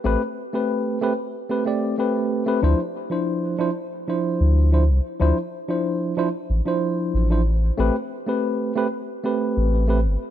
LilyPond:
<<
  \new Staff \with { instrumentName = "Tine electric piano" } { \time 4/4 \key d \dorian \tempo 4 = 93 <a c' g' b'>16 r8 <a c' g' b'>8. <a c' g' b'>16 r8 <a c' g' b'>16 <a c' g' d''>8 <a c' g' b'>8. <a c' g' b'>16 | <f d' e' c''>16 r8 <f d' e' c''>8. <f d' e' c''>16 r8 <f d' e' c''>4 <f d' e' c''>16 r8 | <f d' e' c''>16 r8 <f d' e' c''>8. <f d' e' c''>16 r8 <f d' e' c''>4 <f d' e' c''>16 r8 | <a c' g' b'>16 r8 <a c' g' b'>8. <a c' g' b'>16 r8 <a c' g' b'>4 <a c' g' b'>16 r8 | }
  \new Staff \with { instrumentName = "Analog synth bass" } { \clef bass \time 4/4 \key d \dorian a,,16 r2. r8. | d,16 r2 r8 d,8. c,16 r16 | d,16 r4. r16 a,,16 r8. a,,8. r16 | a,,16 r2 r8 a,,8. g,,16 r16 | }
>>